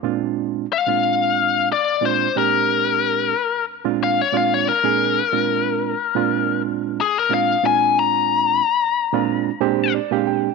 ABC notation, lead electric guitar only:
X:1
M:4/4
L:1/16
Q:"Swing 16ths" 1/4=91
K:Bbmix
V:1 name="Lead electric guitar"
z4 f6 d2 c2 B2- | B6 z2 f _d f d B4- | B8 z2 A B f2 a2 | b12 z4 |]